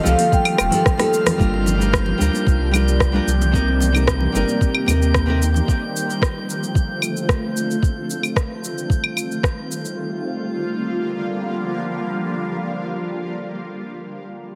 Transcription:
Already playing: ambient pad D#3 G3 A3 C4 F4, synth texture F6
0.03 sub bass C2, nylon-string guitar F3 D#4 G4 A4, vibraphone F5, shaker
0.19 open hi-hat, high conga, shaker
0.32 vibraphone G5, kick, shaker
0.45 open hi-hat, claves
0.58 sub bass D#1, cross-stick, high conga, claves, shaker
0.70 nylon-string guitar F3 D#4 G4 A4, open hi-hat, shaker
0.86 kick, cross-stick, shaker
0.97 nylon-string guitar F3 D#4 G4 A4, cross-stick, open hi-hat, high conga
1.14 shaker
1.26 cross-stick, open hi-hat, low conga, shaker
1.37 sub bass G1, ambient pad F3 G3 A#3 D4 G4, nylon-string guitar G3 D4 F4 A#4, synth texture G6, kick, high conga, shaker
1.54 high bongo
1.66 low conga, shaker
1.78 nylon-string guitar G3 D4 F4 A#4, high bongo, shaker
1.93 kick, cross-stick, high conga, shaker
2.06 low conga
2.18 sub bass D2, nylon-string guitar G3 D4 F4 A#4, shaker
2.33 high conga, shaker
2.46 sub bass C2, kick, high bongo, shaker
2.71 nylon-string guitar G3 D4 F4 A#4, high bongo, high conga, claves, shaker
2.88 shaker
3.00 kick, cross-stick, shaker
3.12 nylon-string guitar G3 D4 F4 A#4, high conga
3.27 sub bass C2, shaker
3.42 low conga, shaker
3.51 nylon-string guitar C3 C4 D#4 A#4, ambient pad D#3 C4 G4, kick, high conga, shaker
3.68 high bongo
3.80 low conga, shaker
3.92 nylon-string guitar C3 C4 D#4 A#4, high bongo, claves, shaker
4.07 kick, cross-stick, high conga, shaker
4.21 low conga
4.32 sub bass G1, nylon-string guitar C3 C4 D#4, shaker
4.36 nylon-string guitar A#4
4.48 high conga, shaker
4.61 kick, shaker
4.75 claves
4.86 sub bass D#2, nylon-string guitar C3 C4 D#4 A#4, high conga, claves, shaker
5.02 shaker
5.14 kick, cross-stick, shaker
5.26 nylon-string guitar C3 C4 D#4 A#4, high conga
5.42 shaker
5.54 low conga, shaker
5.68 ambient pad D3 F3 A3 C4 F4, kick, shaker
5.96 shaker
6.10 shaker
6.22 kick, cross-stick, shaker
6.50 shaker
6.63 shaker
6.75 kick, shaker
7.02 claves, shaker
7.17 shaker
7.29 kick, cross-stick, shaker
7.57 shaker
7.71 shaker
7.83 ambient pad D#3 G3 C4 F4, kick, shaker
8.10 shaker
8.23 claves, shaker
8.36 kick, cross-stick, shaker
8.64 shaker
8.78 shaker
8.90 kick, shaker
9.04 claves
9.17 claves, shaker
9.31 shaker
9.43 kick, cross-stick, shaker
9.72 shaker
9.85 shaker
9.98 ambient pad D3 F3 G3 A#3 F4

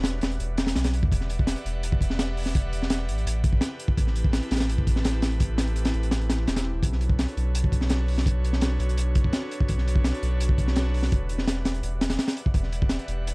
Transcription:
Already playing: sub bass E1, analog synth pad G4 B4 D5 E5 F#5
0.04 snare, closed hi-hat
0.21 sub bass E1, snare, closed hi-hat
0.31 closed hi-hat
0.40 sub bass E1, closed hi-hat
0.58 snare, closed hi-hat
0.67 snare, closed hi-hat
0.76 sub bass B1, snare, closed hi-hat
0.84 snare, closed hi-hat
0.93 closed hi-hat
1.03 sub bass E2, kick
1.12 sub bass E1, analog synth pad G4 B4 D5 E5 F#5, kick, closed hi-hat
1.21 snare
1.30 closed hi-hat
1.39 kick
1.47 snare, closed hi-hat
1.56 closed hi-hat
1.65 sub bass E1, closed hi-hat
1.83 closed hi-hat
1.92 kick
2.01 kick, closed hi-hat
2.10 snare
2.19 snare, closed hi-hat
2.37 open hi-hat
2.46 snare
2.55 kick, closed hi-hat
2.73 closed hi-hat
2.82 snare
2.90 snare, closed hi-hat
3.08 sub bass A1, closed hi-hat
3.18 closed hi-hat
3.26 sub bass A1, closed hi-hat
3.44 kick, closed hi-hat
3.53 kick
3.61 snare, closed hi-hat
3.79 closed hi-hat
3.88 kick
3.97 sub bass A1, analog synth pad C4 E4 G4 A4 B4, kick, closed hi-hat
4.07 snare
4.16 closed hi-hat
4.24 kick
4.33 snare, closed hi-hat
4.42 closed hi-hat
4.51 sub bass A1, snare, closed hi-hat
4.56 snare, closed hi-hat
4.60 snare, closed hi-hat
4.69 closed hi-hat
4.78 kick
4.87 kick, closed hi-hat
4.96 snare
5.04 snare, closed hi-hat
5.22 snare, closed hi-hat
5.32 closed hi-hat
5.40 analog synth pad C4 E4 G4 A4 B4, kick, closed hi-hat
5.58 snare, closed hi-hat
5.67 closed hi-hat
5.76 closed hi-hat
5.85 snare, closed hi-hat
5.94 sub bass A1, closed hi-hat
6.03 closed hi-hat
6.11 sub bass A1, snare, closed hi-hat
6.21 closed hi-hat
6.30 snare, closed hi-hat
6.47 sub bass E1, snare, closed hi-hat
6.56 snare, closed hi-hat
6.74 sub bass E1
6.83 sub bass B1, analog synth pad D4 F#4 A4 B4 C#5, kick, closed hi-hat
6.93 snare
7.01 closed hi-hat
7.10 kick
7.19 snare, closed hi-hat
7.28 closed hi-hat
7.37 sub bass B1, closed hi-hat
7.55 closed hi-hat
7.64 kick
7.72 kick, closed hi-hat
7.81 snare
7.89 snare, closed hi-hat
8.08 open hi-hat
8.18 snare
8.26 analog synth pad D4 F#4 A4 B4 C#5, kick, closed hi-hat
8.44 closed hi-hat
8.53 snare
8.61 snare, closed hi-hat
8.80 sub bass B1, closed hi-hat
8.89 closed hi-hat
8.97 sub bass B1, closed hi-hat
9.15 kick, closed hi-hat
9.24 kick
9.33 snare, closed hi-hat
9.51 closed hi-hat
9.60 kick
9.68 sub bass B1, analog synth pad D4 F#4 A4 B4 C#5, kick, closed hi-hat
9.78 snare
9.88 closed hi-hat
9.95 kick
10.04 snare, closed hi-hat
10.14 closed hi-hat
10.23 sub bass B1, closed hi-hat
10.40 closed hi-hat
10.49 kick
10.58 kick, closed hi-hat
10.68 snare
10.76 snare, closed hi-hat
10.94 open hi-hat
11.03 snare
11.12 sub bass E1, analog synth pad G4 B4 D5 E5 F#5, kick, closed hi-hat
11.29 closed hi-hat
11.38 snare
11.48 snare, closed hi-hat
11.65 sub bass E1, snare, closed hi-hat
11.74 closed hi-hat
11.83 sub bass E1, closed hi-hat
12.01 snare, closed hi-hat
12.10 snare, closed hi-hat
12.19 snare, closed hi-hat
12.28 snare, closed hi-hat
12.37 closed hi-hat
12.46 kick
12.54 sub bass E1, analog synth pad G4 B4 D5 E5 F#5, kick, closed hi-hat
12.63 snare
12.73 closed hi-hat
12.82 kick
12.89 snare, closed hi-hat
12.99 closed hi-hat
13.08 sub bass E1, closed hi-hat
13.27 closed hi-hat

